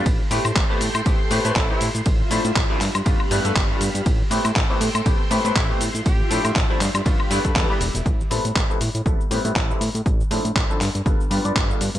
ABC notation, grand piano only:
X:1
M:4/4
L:1/16
Q:"Swing 16ths" 1/4=120
K:Am
V:1 name="Grand piano"
z2 [A,B,CEG] z2 [A,B,CEG] z2 [A,B,CEG] z [A,B,CEG] [A,B,CEB] [A,B,EA] [A,B,CEG] z2 | z2 [F,A,CDE] z2 [F,A,CDE] z2 [G,A,B,DF] z [G,A,B,DE] [G,A,B,DA] [G,A,B,DG] [G,A,B,DF] z2 | z2 [A,B,CEG] z2 [A,B,CEG] z2 [A,B,CEG] z [A,B,CEG] [A,B,CEB] [A,A] [A,B,CEG] z2 | z2 [F,A,CDE] z2 [F,A,CDE] z2 [G,A,B,DF] z [G,A,B,DE] [G,A,B,DA] [E,G,B,DA] [E,G,B,DG] z2 |
z2 [G,B,CEA] z2 [G,B,CEA] z2 [G,B,CEA] z [G,B,CEG] [G,B,CEc] [G,B,CEB] [G,B,CEA] z2 | z2 [F,CDEA] z2 [F,CDEA] z2 [G,B,DFA] z [G,B,DFG] [G,B,DFd] [G,F] [G,B,DFA] z2 |]